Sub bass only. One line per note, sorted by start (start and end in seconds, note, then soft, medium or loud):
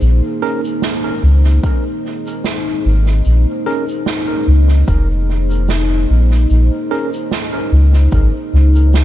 0.01 0.21 A#1 loud
1.23 1.59 C#2 medium
2.85 3.22 G#1 medium
3.26 3.46 A#1 medium
4.47 4.84 C#2 medium
4.88 6.06 F1 medium
6.10 6.46 A#1 medium
6.50 6.70 A#1 medium
7.72 8.08 C#2 loud
8.12 8.32 G#1 medium
8.53 9.04 C#2 medium